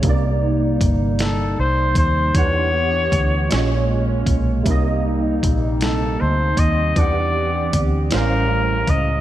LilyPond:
<<
  \new Staff \with { instrumentName = "Flugelhorn" } { \time 6/8 \key c \mixolydian \tempo 4. = 52 r4. a'8 c''8 c''8 | cis''2 r4 | r4. a'8 c''8 ees''8 | d''4 r8 bes'4 ees''8 | }
  \new Staff \with { instrumentName = "Tine electric piano" } { \time 6/8 \key c \mixolydian <c bes ees' d''>2. | <e d' g' fis''>4. <bes, aes des' des''>4. | <c bes ees' ees''>2. | <e d' g' fis''>4. <a, g cis' bis' eis''>4. | }
  \new Staff \with { instrumentName = "Analog synth pad" } { \time 6/8 \key c \mixolydian << { ees'2. | g'4. des'4. | ees'2. | g'2. | } \\ { <c g bes>2. | <e b fis''>4. <aes bes>4. | <c g c'>2. | <e b fis''>4. <a cis'>4. | } >> }
  \new Staff \with { instrumentName = "Fingered electric bass" } { \clef bass \time 6/8 \key c \mixolydian c,4 g,,4 c,8 ees,8 | e,4 d,8 bes,,4 b,,8 | c,4 bes,,4 d,8 ees,8 | e,4 d,8 a,,4 cis,8 | }
  \new DrumStaff \with { instrumentName = "Drums" } \drummode { \time 6/8 <hh bd>4 <hh bd>8 <hh sn>4 <hh bd>8 | <hh bd>4 <hh bd>8 <hh sn>4 <hh bd>8 | <hh bd>4 <hh bd>8 <hh sn>4 <hh bd>8 | <hh bd>4 <hh bd>8 <hh sn>4 <hh bd>8 | }
>>